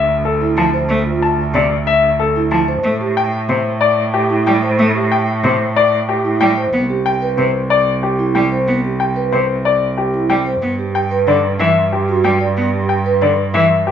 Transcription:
Already playing: D2 E5
0.25 A4
0.41 E4
0.57 F3 A5
0.74 C5
0.89 A3
1.06 F4
1.22 A5
1.54 C3 D5
1.87 E5
2.19 A4
2.36 E4
2.51 F3 A5
2.68 C5
2.84 A2 A3
3.01 G4
3.17 G5
3.49 C3 C5
3.81 D5
4.14 G4
4.30 E4
4.47 G3 G5
4.63 C5
4.79 A3
4.95 G4
5.12 G5
5.44 C3 C5
5.76 D5
6.09 G4
6.25 E4
6.41 G3 G5
6.57 C5
6.73 C2 B3
6.90 G4
7.06 G5
7.22 B4
7.38 C3 C5
7.70 D5
8.03 G4
8.19 E4
8.35 G3 G5
8.52 C5
8.68 B3
8.84 G4
9.00 G5
9.16 B4
9.32 C3 C5
9.65 D5
9.98 G4
10.14 E4
10.30 G3 G5
10.46 C5
10.62 G2 B3
10.79 G4
10.95 G5
11.11 B4
11.27 D3 D5
11.60 E3 E5
11.93 G4
12.09 F#4
12.24 G3 G5
12.41 D5
12.57 B3
12.74 G4
12.89 G5
13.06 B4
13.22 D3 D5
13.54 E3 E5
13.87 G4

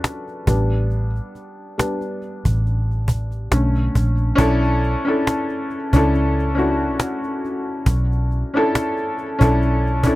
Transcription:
Already playing: C#4 D4 F#4 A4 B4 D5
0.04 cajon slap
0.28 cajon slap
0.47 A1 G3 B3 D4, cajon bass
0.90 cajon slap
1.16 cajon slap
1.35 cajon slap
1.78 G3 B3 D4, cajon slap
2.01 cajon slap
2.22 cajon slap
2.45 A1, cajon bass
2.66 cajon slap
2.91 cajon slap
3.08 cajon bass
3.31 cajon slap
3.51 B1 D3 A3 C#4, cajon slap
3.75 cajon slap
3.95 A#1, cajon bass
4.17 cajon slap
4.35 B1 C#4 D4 E4 A4, cajon bass
4.64 cajon slap
4.83 cajon slap
5.05 C#4 D4 E4 A4
5.27 cajon slap
5.49 cajon slap
5.70 cajon slap
5.93 C#2 C#4 D4 E4 A4, cajon bass
6.14 cajon slap
6.39 cajon slap
6.55 C#4 D4 E4 F#4, cajon slap
7.00 cajon slap
7.23 cajon slap
7.45 cajon slap
7.86 B1, cajon bass
8.12 cajon slap
8.31 cajon slap
8.54 C#4 D4 E4 A4
8.75 cajon slap
8.97 cajon slap
9.18 cajon slap
9.39 B1 C#4 D4 E4 A4, cajon bass
9.62 cajon slap
9.86 cajon slap
10.03 C#4 D4 E4 A4, cajon bass

